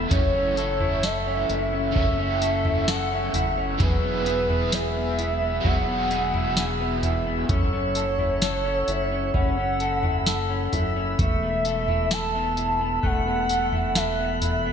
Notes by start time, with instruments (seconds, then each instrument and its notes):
Already playing: overdriven electric guitar E3 A3 B3 E4, clean electric guitar B3 E4 A4, tonewheel organ A4 E6
0.09 analog synth bass F#1, overdriven electric guitar F#2 C#3 E3 A3 E4, clean electric guitar C#4, soft synth lead C#5, tonewheel organ F#5 C#6, kick, floor tom, tambourine
0.34 clean electric guitar C#4
0.55 overdriven electric guitar A3 E4, clean electric guitar A4, tambourine
0.60 overdriven electric guitar E3
0.80 clean electric guitar E4, floor tom
1.03 clean electric guitar A4, soft synth lead E5, snare, tambourine
1.27 clean electric guitar C#4
1.49 analog synth bass F#1, clean electric guitar E4, tambourine
1.73 clean electric guitar C#4
1.92 analog synth bass F#1, overdriven electric guitar C#3, kick, floor tom
1.96 overdriven electric guitar E3, clean electric guitar C#4, soft synth lead E5
2.00 overdriven electric guitar A3 E4
2.19 clean electric guitar C#4
2.42 clean electric guitar A4, tambourine
2.65 clean electric guitar E4, floor tom
2.88 clean electric guitar A4, soft synth lead F#5, snare, tambourine
3.12 clean electric guitar C#4
3.34 analog synth bass F#1, clean electric guitar E4, floor tom, tambourine
3.58 clean electric guitar C#4
3.79 analog synth bass E1, overdriven electric guitar E3 F#3 B3 E4 G#4, clean electric guitar F#3, tonewheel organ G#4 B5, soft synth lead B4, kick, floor tom, tambourine
4.04 clean electric guitar B3
4.24 overdriven electric guitar E4 G#4, clean electric guitar G#4, tambourine
4.29 overdriven electric guitar B3
4.49 clean electric guitar E4, floor tom
4.72 clean electric guitar G#4, soft synth lead E5, snare, tambourine
4.96 clean electric guitar B3
5.19 clean electric guitar E4, tambourine
5.42 clean electric guitar B3
5.61 analog synth bass E1, overdriven electric guitar F#3, clean electric guitar F#3, kick, floor tom
5.66 overdriven electric guitar B3 E4, soft synth lead F#5
5.73 overdriven electric guitar G#4
5.88 clean electric guitar B3
6.11 clean electric guitar G#4, tambourine
6.34 clean electric guitar E4, floor tom
6.57 clean electric guitar G#4, snare, tambourine
6.80 clean electric guitar B3
7.03 clean electric guitar E4, floor tom, tambourine
7.27 clean electric guitar B3
7.49 analog synth bass F#1, clean electric guitar C#4, tonewheel organ A4 F#5 C#6 E6, soft synth lead C#5, kick, floor tom, tambourine
7.73 clean electric guitar C#4
7.95 clean electric guitar A4, tambourine
8.19 clean electric guitar E4, floor tom
8.42 clean electric guitar A4, snare, tambourine
8.65 clean electric guitar C#4
8.88 analog synth bass F#1, clean electric guitar E4, tambourine
9.11 clean electric guitar C#4
9.34 analog synth bass F#1, clean electric guitar C#4, soft synth lead F#5, tonewheel organ B5, kick, floor tom
9.57 clean electric guitar C#4
9.80 clean electric guitar A4, tambourine
10.03 clean electric guitar E4, floor tom
10.26 clean electric guitar A4, snare, tambourine
10.50 clean electric guitar C#4
10.73 analog synth bass F#1, clean electric guitar E4, floor tom, tambourine
10.96 clean electric guitar C#4
11.19 analog synth bass E1, clean electric guitar A3, tonewheel organ E5, soft synth lead E5, kick, floor tom, tambourine
11.43 clean electric guitar B3
11.65 clean electric guitar A4, tambourine
11.88 clean electric guitar E4, floor tom
12.11 clean electric guitar A4, soft synth lead A5, snare, tambourine
12.35 clean electric guitar B3
12.57 clean electric guitar E4, tambourine
12.81 clean electric guitar B3
13.03 analog synth bass E1, clean electric guitar A3, soft synth lead F#5, tonewheel organ F#6, kick, floor tom
13.27 clean electric guitar B3
13.49 clean electric guitar A4, tambourine
13.72 clean electric guitar E4, floor tom
13.95 clean electric guitar A4, soft synth lead E5, snare, tambourine
14.19 clean electric guitar B3
14.42 clean electric guitar E4, floor tom, tambourine
14.65 clean electric guitar B3